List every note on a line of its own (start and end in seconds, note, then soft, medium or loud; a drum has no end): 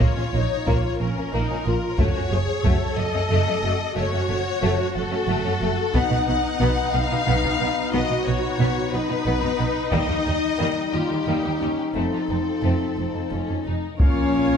0.00 0.07 A#1 soft
0.00 0.15 A#3 soft
0.00 0.34 F4 medium
0.00 0.99 C#5 medium
0.00 taiko medium
0.16 0.23 A#2 soft
0.16 0.23 A#3 soft
0.16 0.23 C#4 soft
0.33 0.40 A#1 soft
0.33 0.40 A#2 soft
0.33 0.40 A#3 soft
0.33 0.68 D#4 soft
0.66 0.74 A#1 soft
0.66 0.74 A#2 medium
0.66 0.82 A#3 medium
0.66 0.79 A#3 soft
0.66 0.79 F4 soft
0.66 1.01 F4 soft
0.66 taiko medium
0.99 1.07 A#1 soft
0.99 1.07 A#2 soft
0.99 1.06 A#3 soft
0.99 1.33 C#4 soft
0.99 1.97 A#4 medium
1.16 1.23 A#2 soft
1.16 1.23 A#3 soft
1.16 1.23 C#4 soft
1.32 1.40 A#1 soft
1.32 1.40 A#2 soft
1.32 1.48 A#3 medium
1.32 1.66 D#4 soft
1.50 1.57 A#2 soft
1.50 1.57 A#3 soft
1.50 1.57 C#4 soft
1.66 1.73 A#1 soft
1.66 1.73 A#2 soft
1.66 1.73 A#3 soft
1.66 1.78 A#3 soft
1.66 1.99 F4 soft
1.66 1.78 F4 soft
1.99 2.06 F#1 medium
1.99 2.05 F#2 soft
1.99 2.14 A3 soft
1.99 2.31 F#4 soft
1.99 2.98 C#5 medium
1.99 taiko medium
2.15 2.22 F#2 soft
2.15 2.22 A3 soft
2.15 2.22 C#4 soft
2.32 2.39 F#1 soft
2.32 2.38 F#2 soft
2.32 2.39 A3 soft
2.32 2.65 G#4 soft
2.64 2.72 F#1 soft
2.64 2.72 F#2 medium
2.64 2.80 A3 medium
2.64 2.77 A3 medium
2.64 2.77 F#4 medium
2.64 3.96 A4 medium
2.64 taiko medium
2.97 3.05 F#1 soft
2.97 3.04 F#2 soft
2.97 3.04 A3 soft
2.97 3.96 D#5 medium
3.13 3.21 F#2 soft
3.13 3.21 A3 soft
3.13 3.20 C#4 soft
3.30 3.37 F#1 medium
3.30 3.37 F#2 medium
3.30 3.46 A3 medium
3.47 3.54 F#2 soft
3.47 3.54 A3 soft
3.47 3.54 C#4 soft
3.63 3.70 F#1 soft
3.63 3.71 F#2 soft
3.63 3.75 A3 soft
3.63 3.71 A3 soft
3.63 3.75 F#4 soft
3.96 4.04 F#1 medium
3.96 4.03 F#2 medium
3.96 4.12 A3 medium
3.96 5.91 F#4 medium
3.96 4.94 C#5 medium
4.12 4.19 F#2 soft
4.12 4.20 A3 soft
4.12 4.20 C#4 soft
4.29 4.36 F#1 soft
4.29 4.36 F#2 soft
4.29 4.36 A3 soft
4.61 4.70 F#1 medium
4.61 4.69 F#2 medium
4.61 4.74 A3 medium
4.61 4.78 A3 medium
4.61 4.73 F#4 medium
4.95 5.03 F#1 soft
4.95 5.02 F#2 soft
4.95 5.02 A3 soft
4.95 5.93 A4 medium
5.11 5.18 F#2 soft
5.11 5.18 A3 soft
5.11 5.18 C#4 soft
5.28 5.35 F#1 medium
5.28 5.35 F#2 medium
5.28 5.43 A3 medium
5.44 5.52 F#2 soft
5.44 5.51 A3 soft
5.44 5.52 C#4 soft
5.61 5.68 F#1 soft
5.61 5.68 F#2 soft
5.61 5.68 A3 soft
5.61 5.74 A3 medium
5.61 5.74 F#4 medium
5.94 6.01 B1 medium
5.94 6.01 B2 medium
5.94 6.09 B3 medium
5.94 9.89 B3 medium
5.94 9.89 D#4 medium
5.94 7.90 D#4 medium
5.94 6.27 F#5 medium
5.94 taiko medium
6.10 6.17 B2 soft
6.10 6.17 B3 soft
6.10 6.17 D#4 soft
6.26 6.34 B1 soft
6.26 6.34 B2 soft
6.26 6.34 B3 soft
6.26 6.93 F#5 medium
6.60 6.67 B1 medium
6.60 6.68 B2 medium
6.60 6.76 B3 medium
6.93 7.00 B1 soft
6.93 7.01 B2 soft
6.93 7.01 B3 soft
6.93 7.93 F5 medium
7.11 7.17 B2 soft
7.11 7.18 B3 medium
7.11 7.18 D#4 soft
7.27 7.34 B1 medium
7.27 7.33 B2 medium
7.27 7.42 B3 medium
7.44 7.50 B2 soft
7.44 7.50 B3 soft
7.44 7.51 D#4 soft
7.44 taiko soft
7.60 7.67 B1 soft
7.60 7.67 B2 soft
7.60 7.67 B3 soft
7.93 8.00 B1 medium
7.93 8.00 B2 medium
7.93 8.09 B3 medium
7.93 8.93 F#4 medium
7.93 8.26 D#5 medium
8.10 8.17 B2 soft
8.10 8.17 B3 soft
8.10 8.17 D#4 soft
8.26 8.33 B1 soft
8.26 8.34 B2 soft
8.26 8.34 B3 soft
8.26 8.93 C#5 medium
8.59 8.66 B1 medium
8.59 8.66 B2 medium
8.59 8.76 B3 medium
8.93 9.00 B1 soft
8.93 9.00 B2 soft
8.93 9.00 B3 soft
8.93 10.94 D#4 medium
8.93 9.93 B4 medium
9.09 9.16 B2 soft
9.09 9.16 B3 soft
9.09 9.16 D#4 soft
9.25 9.33 B1 medium
9.25 9.33 B2 medium
9.25 9.40 B3 medium
9.41 9.50 B2 soft
9.41 9.48 B3 soft
9.41 9.49 D#4 soft
9.58 9.66 B1 soft
9.58 9.66 B2 soft
9.58 9.65 B3 soft
9.91 10.00 D#2 medium
9.91 10.08 G3 medium
9.91 11.92 G3 soft
9.91 10.07 A#3 medium
9.91 13.64 D#4 soft
9.91 10.91 D#5 medium
9.91 taiko medium
10.08 10.16 D#2 soft
10.08 10.15 A#3 soft
10.08 10.15 G4 soft
10.25 10.33 D#2 soft
10.25 10.34 D#2 soft
10.25 10.32 G3 soft
10.25 10.32 D#4 soft
10.58 10.67 D#2 medium
10.58 10.67 D#2 soft
10.58 10.75 G3 soft
10.58 10.75 A#3 medium
10.93 11.00 D#2 soft
10.93 11.00 G3 soft
10.93 11.00 D#4 soft
10.93 11.27 F4 soft
10.93 11.95 G4 medium
11.10 11.17 D#2 soft
11.10 11.17 A#3 soft
11.10 11.17 G4 soft
11.27 11.34 D#2 soft
11.27 11.43 G3 soft
11.27 11.43 A#3 soft
11.27 11.62 D#4 soft
11.44 11.51 D#2 soft
11.44 11.51 A#3 soft
11.44 11.51 G4 soft
11.61 11.68 D#2 soft
11.61 11.69 D#2 soft
11.61 11.68 G3 soft
11.61 11.96 C#4 soft
11.61 11.68 D#4 soft
11.95 12.02 F1 soft
11.95 12.02 F2 soft
11.95 13.64 F3 soft
11.95 12.11 A3 soft
11.95 12.11 C4 soft
11.95 13.49 C4 soft
11.95 13.63 A4 medium
12.13 12.20 F2 soft
12.13 12.20 D#4 soft
12.13 12.20 F4 soft
12.29 12.36 F1 soft
12.29 12.36 F2 soft
12.29 12.37 C4 soft
12.29 12.36 D#4 soft
12.63 12.71 F1 soft
12.63 12.71 F2 soft
12.63 12.79 A3 soft
12.63 12.80 C4 soft
12.97 13.04 F1 soft
12.97 13.05 F2 soft
12.97 13.29 C4 soft
13.15 13.22 F2 soft
13.30 13.39 F1 soft
13.30 13.39 F2 soft
13.30 13.65 C#4 soft
13.49 13.56 F2 soft
13.65 13.73 F1 soft
13.65 13.73 F2 soft
13.65 13.99 D#4 soft
13.99 14.57 A#1 soft
13.99 14.57 A#2 soft
13.99 14.57 A#3 medium
13.99 14.57 A#3 soft
13.99 14.57 C#4 medium
13.99 14.57 F4 soft
13.99 14.57 A#4 soft
13.99 14.57 C#5 medium
13.99 14.57 F5 soft
13.99 taiko medium